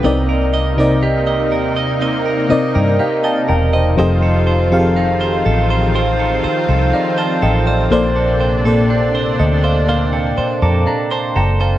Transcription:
<<
  \new Staff \with { instrumentName = "FM electric piano" } { \time 4/4 \key c \dorian \tempo 4 = 61 << { r2 r8 ees''16 g''16 <f'' g'' bes''>16 <f'' g'' a''>16 <ees'' g'' bes''>16 <c'' ees''>16~ | <c'' ees''>16 r2 r8. <d'' f''>16 <f'' a''>16 <ees'' g''>16 <d'' f''>16~ | <d'' f''>16 r4 r16 ees''16 f''16 f''16 g''16 r16 <a'' bes'' d'''>16 bes''16 <a'' c'''>16 <g'' bes''>16 <f'' a''>16 | } \\ { <c c' ees' bes' d''>8 r16 <c c' ees' bes' d''>4~ <c c' ees' bes' d''>16 r8 <c c' ees' bes' d''>4 r8 | <f c' g' a' ees''>8 r16 <f c' g' aes' a' f''>4~ <f c' g' aes' a' f''>16 r2 | <bes, bes a' c'' d''>8 r16 <bes, bes a' c'' d''>4~ <bes, bes a' c'' d''>16 r2 | } >> }
  \new Staff \with { instrumentName = "Clean electric guitar" } { \time 4/4 \key c \dorian <c' ees''>16 bes'16 ees''16 bes'16 g'16 ees''16 bes'16 ees''16 <c' ees''>16 bes'16 ees''16 bes'16 g'16 ees''16 bes'16 ees''16 | <f c''>16 a'16 c''16 a'16 ees'16 c''16 a'16 c''16 <f c''>16 a'16 c''16 a'16 ees'16 c''16 a'16 c''16 | <bes c''>16 a'16 c''16 a'16 d'16 c''16 a'16 c''16 <bes c''>16 a'16 c''16 a'16 d'16 c''16 a'16 c''16 | }
  \new Staff \with { instrumentName = "Analog synth pad" } { \time 4/4 \key c \dorian << { <c ees'>1 | <ees f'>1 | <c d'>1 | } \\ { bes1 | c'1~ | c'1 | } >> }
  \new Staff \with { instrumentName = "Fingered electric bass" } { \clef bass \time 4/4 \key c \dorian c,4. ees,4 r16 g,16 r8 e,,8 | f,,4. a,,4 r16 c,16 r8 a,,8 | bes,,4. d,4 r16 f,16 r8 fis,,8 | }
>>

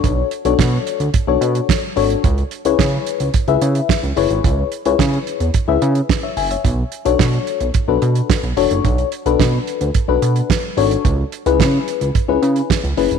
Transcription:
<<
  \new Staff \with { instrumentName = "FM electric piano" } { \time 4/4 \key b \dorian \tempo 4 = 109 <d' fis' a' cis''>8 r16 <d' fis' a' cis''>4 r8 <d' fis' a' cis''>4 r16 <d' fis' a' cis''>8 | r8. <e' gis' b' cis''>4 r8 <e' gis' b' e''>4 r16 <e' gis' b' cis''>8~ | <e' gis' b' cis''>8 r16 <e' gis' b' cis''>4 r8 <e' gis' b' e''>4 <cis'' e''>16 <e'' gis''>16 <cis'' e''>16~ | <cis'' e''>16 r8 <d' fis' a' cis''>4 r8 <d' fis' a' b'>4 r16 <d' fis' a' cis''>8~ |
<d' fis' a' cis''>8 r16 <d' fis' a' b'>4 r8 <d' fis' a' b'>4 r16 <d' fis' a' cis''>8 | r8. <cis' e' gis' b'>4 r8 <cis' e' gis' b'>4 r16 <cis' e' gis' b'>8 | }
  \new Staff \with { instrumentName = "Analog synth bass" } { \clef bass \time 4/4 \key b \dorian b,,8 r16 b,,16 b,8 r16 d,16 r16 b,,16 b,8 r8 gis,,8 | cis,8 r16 cis,16 cis8 r16 cis,16 r16 cis,16 cis8 r16 cis,16 fis,,16 gis,,16 | cis,8 r16 cis,16 cis8 r16 e,16 r16 cis,16 cis8 r8 fis,,8 | b,,8 r16 b,,16 b,8 r16 b,,16 r16 b,,16 b,8 r16 b,,16 e,,16 fis,,16 |
b,,8 r16 b,,16 b,8 r16 d,16 r16 b,,16 b,8 r8 gis,,8 | cis,8 r16 cis,16 cis8 r16 cis,16 r16 cis,16 cis8 r16 cis,16 fis,,16 e,,16 | }
  \new DrumStaff \with { instrumentName = "Drums" } \drummode { \time 4/4 <hh bd>8 hh16 hh16 <bd sn>8 hh16 hh16 <hh bd>8 hh16 hh16 <bd sn>8 hho16 hh16 | <hh bd>16 hh16 hh16 hh16 <bd sn>8 hh16 hh16 <hh bd>16 hh16 hh16 hh16 <bd sn>16 hh16 hho16 hh16 | <hh bd>8 hh16 hh16 <bd sn>16 hh16 hh16 hh16 <hh bd>8 hh16 hh16 <bd sn>8 hho16 hh16 | <hh bd>8 hh16 hh16 <bd sn>16 hh16 hh16 hh16 <hh bd>8 hh16 hh16 <bd sn>16 hh16 hho16 hh16 |
<hh bd>16 hh16 hh16 hh16 <bd sn>8 hh16 hh16 <hh bd>8 hh16 hh16 <bd sn>8 hho16 hh16 | <hh bd>8 hh16 hh16 <bd sn>8 hh16 hh16 <hh bd>8 hh16 hh16 <bd sn>16 hh16 hho16 hh16 | }
>>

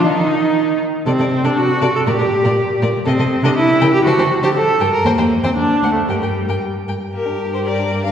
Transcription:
<<
  \new Staff \with { instrumentName = "Violin" } { \time 2/4 \key g \minor \tempo 4 = 119 ees'4. r8 | d''16 d''16 r16 d''16 r8 d''16 r16 | d''16 d''16 r16 d''16 r8 d''16 r16 | ees''16 ees''16 r16 ees''16 r8 g''16 r16 |
a''16 a''16 r16 a''16 r8 g''16 r16 | g''16 g''16 r16 g''16 r8 fis''16 r16 | g''16 g''16 r16 g''16 r8 g''16 r16 | bes'8. c''16 d''8. f''16 | }
  \new Staff \with { instrumentName = "Violin" } { \time 2/4 \key g \minor ees'4. r8 | a'16 a'16 r16 a'16 r8 a'16 r16 | bes'16 bes'16 r16 bes'16 r8 bes'16 r16 | a'16 a'16 r16 a'16 r8 ais'16 r16 |
c''16 c''16 r16 c''16 r8 bes'16 r16 | c''16 c''16 r16 c''16 r8 c''16 r16 | bes'16 bes'16 r16 bes'16 r8 bes'16 r16 | bes16 d'16 g'16 bes'16 g'16 d'16 bes16 d'16 | }
  \new Staff \with { instrumentName = "Viola" } { \time 2/4 \key g \minor ees'4. r8 | c'8. d'16 fis'8. a'16 | g'4. r8 | c'8. d'16 e'8. g'16 |
fis'8. g'16 a'8. bes'16 | bes8. c'16 \tuplet 3/2 { d'4 a8 } | g4 r4 | g'4 bes'4 | }
  \new Staff \with { instrumentName = "Cello" } { \clef bass \time 2/4 \key g \minor ees4. r8 | c16 c16 r16 c16 r8 c16 r16 | bes,16 bes,16 r16 bes,16 r8 bes,16 r16 | c16 c16 r16 c16 r8 cis16 r16 |
d16 d16 r16 d16 r8 g,16 r16 | ees,16 ees,16 r16 ees,16 r8 d,16 r16 | g,16 g,16 r16 g,16 r8 g,16 r16 | g,2 | }
>>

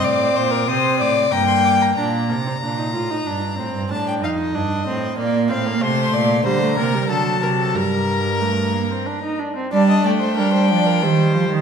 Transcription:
<<
  \new Staff \with { instrumentName = "Violin" } { \time 3/4 \key c \minor \tempo 4 = 93 d'''4 ees'''8 d'''8 bes''16 c'''16 d'''16 bes''16 | r2. | r2. | \key g \minor c'''4 bes''4 a''4 |
bes''2~ bes''8 r8 | a''8 g''2~ g''8 | }
  \new Staff \with { instrumentName = "Violin" } { \time 3/4 \key c \minor d''8 c''16 bes'16 c''8 d''8 g''4 | bes''2. | a''16 g''16 f''16 ees''4~ ees''16 d''8 f''8 | \key g \minor c''8 d''8 c''8 bes'8 a'8 bes'16 a'16 |
bes'2~ bes'8 r8 | d''16 ees''16 d''16 c''16 bes'16 c''16 d''16 bes'16 c''4 | }
  \new Staff \with { instrumentName = "Viola" } { \time 3/4 \key c \minor c'4 c'4 bes4 | d'8 bes16 c'16 d'16 ees'16 f'16 ees'16 d'8 c'8 | d'8 ees'8 d'8 c'8 bes8 c'16 bes16 | \key g \minor a4 g16 a16 bes16 g16 fis4 |
g4 a8 bes16 c'16 d'16 ees'16 d'16 c'16 | d'4 d'4 g4 | }
  \new Staff \with { instrumentName = "Cello" } { \clef bass \time 3/4 \key c \minor a,8 bes,8 c8 a,8 g,4 | bes,8 c8 bes,8 a,8 g,8 a,16 g,16 | a,8 f,8 g,8 a,8 bes,8 a,8 | \key g \minor c8 bes,8 d8 c8 d8 c8 |
g,2~ g,8 r8 | g8 a8 g8 f8 ees8 f16 ees16 | }
>>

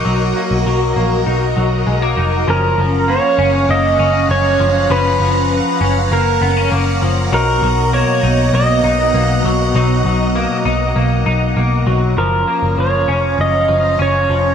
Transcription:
<<
  \new Staff \with { instrumentName = "String machine" } { \time 4/4 \key fis \major \tempo 4 = 99 << { <ais' dis''>1 | <fis'' ais''>1~ | <fis'' ais''>1~ | <fis'' ais''>1~ |
<fis'' ais''>1 | ais''1 | } \\ { <fis' ais''>1 | <cis' eis''>1~ | <cis' eis''>1 | <b, dis''>1~ |
<b, dis''>1 | <cis' eis''>1 | } >> }
  \new Staff \with { instrumentName = "Pedal steel guitar" } { \time 4/4 \key fis \major fis'2. r4 | ais'4 cis''4 dis''4 cis''4 | b'2 ais'4 r4 | ais'4 cis''4 dis''2~ |
dis''2. r4 | ais'4 cis''4 dis''4 cis''4 | }
  \new Staff \with { instrumentName = "Clean electric guitar" } { \time 4/4 \key fis \major <fis ais dis'>8 ais8 fis8 ais8 dis'8 fis8 gis16 ais16 dis'8 | <eis cis'>8 eis8 ais8 cis'8 ais8 cis'4 eis8 | <eis cis'>8 eis4 cis'8 ais8 b16 cis'16 ais8 eis8 | <fis dis'>8 fis8 ais8 dis'8 ais8 dis'8 ais8 fis8 |
<fis dis'>8 fis8 ais8 dis'8 ais8 dis'8 ais8 fis8 | eis8 ais8 eis8 cis'4 eis8 cis'8 eis8 | }
  \new Staff \with { instrumentName = "Picked electric bass" } { \clef bass \time 4/4 \key fis \major b,,8 r16 b,,16 b,,8 ais,,8 b,,8 b,,8 b,,8 eis,,8 | fis,,8 fis,,8. r16 fis,,8 fis,,8 fis,,8 fis,,8 fis,,8 | fis,,8 fis,,8. r16 fis,,8 fis,,8 fis,,8 fis,,8 fis,,8 | b,,8 b,,8. r16 b,,8 b,,8 b,,8 b,,8 b,,8 |
b,,8 b,,8. r16 b,,8 b,,8 b,,8 b,,8 b,,8 | fis,,8 r16 fis,,16 fis,,8 eis,,8 fis,,8 fis,,8 fis,,8 eis,,8 | }
>>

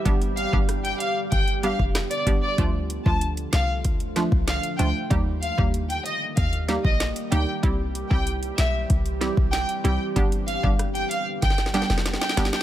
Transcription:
<<
  \new Staff \with { instrumentName = "Violin section" } { \time 4/4 \key g \mixolydian \tempo 4 = 95 r8 f''16 r8 g''16 f''16 r16 g''16 r16 f''16 r8 d''16 r16 d''16 | r8. a''16 r8 f''16 r4 r16 f''16 r16 g''16 r16 | r8 f''16 r8 g''16 ees''16 r16 f''16 r8 ees''16 r8 g''16 r16 | r8. g''16 r8 e''16 r4 r16 g''16 r16 g''16 r16 |
r8 f''16 r8 g''16 f''16 r16 g''16 r16 g''16 r8 g''16 r16 g''16 | }
  \new Staff \with { instrumentName = "Synth pluck" } { \time 4/4 \key g \mixolydian <g b d' g'>16 r8 <g b d' g'>16 r4. <g b d' g'>16 r8. <g b d' g'>16 r16 | <f a d' f'>16 r8 <f a d' f'>16 r4. <f a d' f'>16 r8. <f a d' f'>16 r16 | <g bes ees' g'>16 r8 <g bes ees' g'>16 r4. <g bes ees' g'>16 r8. <g bes ees' g'>16 r16 | <g c' e' g'>16 r8 <g c' e' g'>16 r4. <g c' e' g'>16 r8. <g c' e' g'>16 r16 |
<g b d' g'>16 r8 <g b d' g'>16 r4. <g b d' g'>16 r8. <g b d' g'>16 r16 | }
  \new Staff \with { instrumentName = "Ambient pad" } { \clef bass \time 4/4 \key g \mixolydian << { <g g'>1 | <f f'>1 | <g g'>1~ | <g g'>1~ |
<g g'>1 | } \\ { <d b>1 | <d a>1 | <ees bes>1 | <e c'>1 |
<d b>1 | } >> }
  \new Staff \with { instrumentName = "808-style bass" } { \clef bass \time 4/4 \key g \mixolydian g,,8. g,,8. r8 g,,8. f,,8 r16 g,,16 r16 | d,8. d,8. c,8 d,8. c,8 r16 d,16 r16 | ees,8. ees,8. r8 ees,8. bes,,8 r16 d,16 r16 | c,8. c,8. b,,8 c,8. b,,8 r16 c,16 r16 |
g,,8. g,,8. r8 g,,8. f,,8 r16 g,,16 r16 | }
  \new DrumStaff \with { instrumentName = "Drums" } \drummode { \time 4/4 <hh bd>16 hh16 hh16 bd16 <hh ss>16 hh16 hh8 <hh bd>16 hh16 hh16 bd16 <hh ss sn>16 hh16 <hh bd>8 | <hh bd>8 hh16 bd16 hh16 hh16 <hh sn>8 <hh bd>16 hh16 <hh sn>16 bd16 <hh sn>16 hh16 hh8 | <hh bd>8 hh16 bd16 hh16 hh16 hh8 <hh bd>16 hh16 <hh sn>16 bd16 <hh sn>16 hh16 hh8 | <hh bd>8 hh16 bd16 hh16 hh16 <hh sn>8 <hh bd>16 hh16 <hh sn>16 bd16 <hh sn>16 hh16 hh8 |
<hh bd>16 hh16 hh16 bd16 <hh ss>16 hh16 hh8 <hh bd sn>32 sn32 <hh sn>32 sn32 <hh sn>32 sn32 sn32 sn32 <hh sn>32 sn32 <hh sn>32 sn32 <hh sn>32 sn32 sn16 | }
>>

